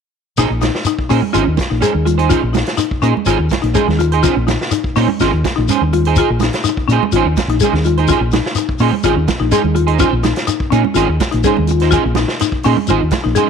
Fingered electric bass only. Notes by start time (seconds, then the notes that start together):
0.38 A#1
0.50 A#1
1.11 A#2
1.35 G#1
1.47 D#2
1.71 A#1
1.95 D#2
2.43 A#1
3.02 A#2
3.27 G#1
3.39 D#2
3.63 A#1
3.88 D#2
4.37 A#1
4.96 A#2
5.22 G#1
5.33 D#2
5.58 A#1
5.81 D#2
6.30 A#1
6.89 A#2
7.13 G#1
7.25 D#2
7.48 A#1
7.73 D#2
8.21 A#1
8.80 A#2
9.04 G#1
9.16 D#2
9.40 A#1
9.64 D#2
10.13 A#1
10.72 A#2
10.96 G#1
11.08 D#2
11.34 A#1
11.58 D#2
12.05 A#1
12.66 A#2
12.90 G#1
13.02 D#2
13.25 A#1